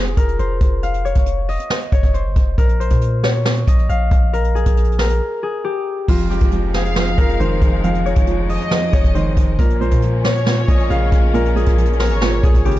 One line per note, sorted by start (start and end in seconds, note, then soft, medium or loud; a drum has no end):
0.00 0.14 F1 loud
0.00 1.60 F4 loud
0.00 2.01 G#4 medium
0.06 closed hi-hat soft
0.17 0.38 F1 loud
0.17 2.29 A#4 medium
0.17 kick loud
0.17 closed hi-hat medium
0.28 closed hi-hat medium
0.39 0.60 F1 loud
0.39 1.11 C5 medium
0.39 closed hi-hat medium
0.61 1.14 F1 loud
0.61 kick loud
0.61 closed hi-hat medium
0.83 2.49 F5 medium
0.83 closed hi-hat medium
0.94 closed hi-hat soft
1.05 1.92 C#5 medium
1.05 closed hi-hat medium
1.15 1.58 F1 loud
1.15 kick medium
1.15 closed hi-hat medium
1.26 closed hi-hat medium
1.49 3.27 D#5 medium
1.49 open hi-hat medium
1.60 closed hi-hat medium
1.70 snare loud
1.81 closed hi-hat soft
1.92 2.03 F1 loud
1.92 2.20 C#5 medium
1.92 kick loud
1.92 closed hi-hat medium
2.03 2.27 F1 loud
2.03 kick medium
2.03 closed hi-hat medium
2.14 2.80 C5 medium
2.14 closed hi-hat medium
2.25 2.36 G1 loud
2.36 2.57 F1 loud
2.36 kick loud
2.36 closed hi-hat medium
2.58 2.90 A#1 loud
2.58 4.33 A#4 medium
2.58 kick loud
2.58 closed hi-hat medium
2.69 closed hi-hat soft
2.80 3.29 C5 medium
2.80 closed hi-hat medium
2.90 3.65 A#2 loud
2.90 kick medium
2.90 closed hi-hat medium
3.01 closed hi-hat medium
3.23 5.15 C#5 medium
3.23 snare loud
3.35 closed hi-hat medium
3.46 snare loud
3.56 closed hi-hat soft
3.67 3.89 A#1 loud
3.67 5.46 D#5 medium
3.67 kick loud
3.67 closed hi-hat medium
3.79 closed hi-hat medium
3.89 4.10 A#1 loud
3.89 5.56 F5 loud
3.89 closed hi-hat medium
4.11 4.64 A#1 loud
4.11 kick loud
4.11 closed hi-hat medium
4.33 4.98 A#4 medium
4.33 closed hi-hat medium
4.44 closed hi-hat soft
4.55 5.42 G#4 medium
4.55 closed hi-hat medium
4.66 5.21 A#1 loud
4.66 kick medium
4.66 closed hi-hat medium
4.77 closed hi-hat medium
4.84 closed hi-hat medium
4.92 closed hi-hat soft
4.99 7.11 A#4 medium
4.99 snare medium
4.99 open hi-hat medium
5.10 closed hi-hat medium
5.43 5.70 G#4 medium
5.64 6.30 G4 medium
6.08 6.40 F1 loud
6.08 6.29 F2 loud
6.08 9.55 F3 medium
6.08 9.55 G#3 medium
6.08 9.55 D#4 medium
6.08 8.61 F4 loud
6.08 kick loud
6.08 crash loud
6.19 closed hi-hat soft
6.30 6.94 F2 medium
6.30 6.80 G4 medium
6.30 closed hi-hat medium
6.41 7.15 F1 loud
6.41 kick medium
6.41 closed hi-hat medium
6.52 7.62 F3 loud
6.52 closed hi-hat medium
6.74 9.02 G#4 medium
6.74 7.80 F5 loud
6.74 snare medium
6.85 closed hi-hat medium
6.96 7.17 F2 medium
6.96 snare loud
7.07 closed hi-hat soft
7.18 7.39 F1 loud
7.18 7.82 F2 medium
7.18 9.30 A#4 medium
7.18 kick loud
7.18 closed hi-hat medium
7.29 closed hi-hat medium
7.40 7.61 F1 loud
7.40 8.49 D#3 medium
7.40 8.12 C5 medium
7.40 closed hi-hat medium
7.61 8.14 F1 loud
7.61 kick loud
7.61 closed hi-hat medium
7.84 8.04 F2 loud
7.84 9.50 F5 medium
7.84 closed hi-hat medium
7.95 closed hi-hat medium
8.06 8.70 F2 medium
8.06 8.93 C#5 medium
8.06 closed hi-hat medium
8.16 8.59 F1 loud
8.16 kick medium
8.16 closed hi-hat medium
8.27 9.37 F3 medium
8.27 closed hi-hat medium
8.49 9.55 D#5 loud
8.49 10.28 D#5 medium
8.49 open hi-hat medium
8.60 closed hi-hat medium
8.71 8.92 F2 medium
8.71 snare loud
8.82 closed hi-hat soft
8.93 9.04 F1 loud
8.93 9.59 F2 medium
8.93 9.21 C#5 medium
8.93 kick loud
8.93 closed hi-hat medium
9.04 9.27 F1 loud
9.04 kick medium
9.04 closed hi-hat medium
9.15 9.59 D#3 loud
9.15 9.80 C5 medium
9.15 closed hi-hat medium
9.26 9.36 G1 loud
9.37 9.58 F1 loud
9.37 kick loud
9.37 closed hi-hat medium
9.59 9.90 A#1 loud
9.59 9.79 A#2 medium
9.59 12.79 A#3 medium
9.59 12.79 C#4 medium
9.59 12.79 F4 medium
9.59 11.34 A#4 medium
9.59 kick loud
9.59 closed hi-hat medium
9.70 closed hi-hat medium
9.81 10.45 A#2 medium
9.81 10.30 C5 medium
9.81 closed hi-hat medium
9.91 10.65 A#2 loud
9.91 kick medium
9.91 closed hi-hat medium
10.02 11.12 F3 medium
10.02 closed hi-hat medium
10.24 12.15 C#5 medium
10.24 11.30 C#5 loud
10.24 snare loud
10.36 closed hi-hat medium
10.46 10.67 A#2 medium
10.46 snare loud
10.57 closed hi-hat soft
10.68 10.89 A#1 loud
10.68 11.32 A#2 medium
10.68 12.47 D#5 medium
10.68 kick loud
10.68 closed hi-hat medium
10.80 closed hi-hat medium
10.90 11.11 A#1 loud
10.90 12.00 C#3 medium
10.90 12.56 F5 loud
10.90 closed hi-hat medium
11.12 11.65 A#1 loud
11.12 kick loud
11.12 closed hi-hat medium
11.34 11.54 A#2 loud
11.34 11.99 A#4 loud
11.34 closed hi-hat medium
11.45 closed hi-hat medium
11.56 12.20 A#2 medium
11.56 12.43 G#4 medium
11.56 closed hi-hat medium
11.66 12.12 A#1 loud
11.66 kick medium
11.66 closed hi-hat medium
11.78 12.79 F3 medium
11.78 closed hi-hat medium
11.85 closed hi-hat medium
11.92 closed hi-hat soft
11.99 12.79 A#4 medium
11.99 12.61 C#5 medium
11.99 snare loud
11.99 open hi-hat medium
12.11 12.42 G#1 loud
12.11 closed hi-hat medium
12.21 12.42 A#2 loud
12.21 snare loud
12.32 closed hi-hat medium
12.43 12.54 A#1 loud
12.43 12.79 A#2 medium
12.43 12.71 G#4 medium
12.43 kick loud
12.43 closed hi-hat medium
12.54 12.79 G#1 loud
12.54 kick medium
12.54 closed hi-hat medium
12.65 12.79 C#3 medium
12.65 12.79 G4 medium
12.65 closed hi-hat medium
12.71 closed hi-hat medium